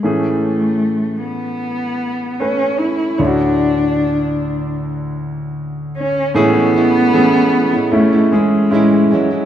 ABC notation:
X:1
M:4/4
L:1/16
Q:1/4=76
K:A
V:1 name="Grand piano"
[A,CG]12 [A,CB]4 | [D,EFc]16 | [A,CG]4 [A,CG]4 [A,CE]2 [G,CG]2 [G,CE]4 |]
V:2 name="Grand piano" clef=bass
[A,,E,]16 | [D,,A,,]16 | [A,,E,]16 |]
V:3 name="Nylon-string guitar"
z16 | z16 | [A,,E,G,CE] [G,CE] [E,G,CE]2 [A,,E,G,CE]3 [G,CE]2 [G,CE] [E,G,CE]2 [A,,E,G,CE]2 [E,G,CE] [G,CE] |]
V:4 name="Cello"
A,6 B,6 C2 E2 | D8 z6 C2 | B,8 A,2 G,4 F,2 |]